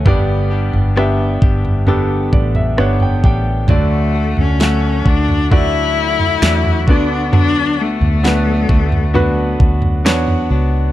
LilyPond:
<<
  \new Staff \with { instrumentName = "Grand piano" } { \time 4/4 \key b \minor \tempo 4 = 66 << { g,4. r4 d''16 e''16 fis''16 g''16 g''8 | d4. r2 d8~ | d4 r2. | } \\ { <b d' g' d''>4 <b d' g' e''>4 <b d' g' a'>4 <b d' g' cis''>4 | <a d' fis' d''>4 <a fis' fis''>4 <a d' fis' d''>4 <a d' fis' d''>8 <b d' fis' d''>8~ | <b d' fis' d''>4 <b d' fis' b'>4 <b d' fis' b'>4 <b d' fis' cis''>4 | } >> }
  \new Staff \with { instrumentName = "Cello" } { \time 4/4 \key b \minor r1 | a8. cis'8. d'8 e'4. d'8 | d'8 a2 r4. | }
  \new Staff \with { instrumentName = "Clean electric guitar" } { \time 4/4 \key b \minor <g, d g b d' g'>8 <g b d' g'>8 <g b d' g'>8 <g b d' g'>8 <g, d g b d' g'>4 <g b d' g'>8 <g b d' g'>8 | <d fis a d' fis'>8 <a d' fis'>8 <fis a fis'>8 <a d' fis'>8 <d fis a d' fis'>4 <fis a d' fis'>8 <b d' fis'>8 | <d fis b d' fis'>8 <b d' fis'>8 <fis b d' fis'>8 <b d' fis'>8 <d fis b d' fis'>4 <fis b d' fis'>8 <b d' fis'>8 | }
  \new Staff \with { instrumentName = "Fingered electric bass" } { \clef bass \time 4/4 \key b \minor g,,8. g,,8. g,,4 a,,8 g,,8 a,,8 | d,8. d,8. d,4. e,8 d,8~ | d,8. d,8. d,4 d,8 e,8 cis,8 | }
  \new DrumStaff \with { instrumentName = "Drums" } \drummode { \time 4/4 <bd tomfh>8. tomfh16 ss8 bd16 tomfh16 tomfh8 bd16 tomfh16 ss16 tomfh16 bd8 | <bd tomfh>8. tomfh16 sn8 bd16 tomfh16 <bd tomfh>8. tomfh16 sn16 tomfh16 bd8 | tomfh8. tomfh16 sn8 bd16 tomfh16 tomfh8 bd16 tomfh16 sn16 tomfh8. | }
>>